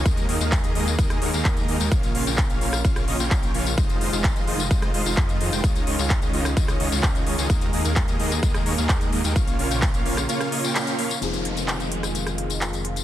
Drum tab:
HH |xxoxxxoxxxoxxxox|xxoxxxo-xxoxxxox|xxo-xxoxxxoxxxox|xxoxxxoxxxoxxxox|
TB |xx-xxx-xxx-xxx-x|xx-xxx-xxx-xxx-x|xx-xxx-xxx-x-x-x|xx-x-x-xxx-x-x-x|
CP |----x-------x---|----x-------x---|----x-------x---|----x-------x---|
SD |---------r------|-------r-r------|---------r------|-------r-r------|
BD |o---o---o---o---|o---o---o---o---|o---o---o---o---|o---o---o---o---|

HH |xxoxxxoxxxoxxxox|xxoxxxoxxxoxxxox|xxxxxxxxxxxxxxxx|
TB |xx-xxx-xxx-xxx-x|xx-xxx-xxx-xxx-x|xx-xxx-xxx-xxx-x|
CP |----x-------x---|----x-------x---|----x-------x---|
SD |---------r------|-------r-r------|-------r-r------|
BD |o---o---o---o---|o---o-----------|----------------|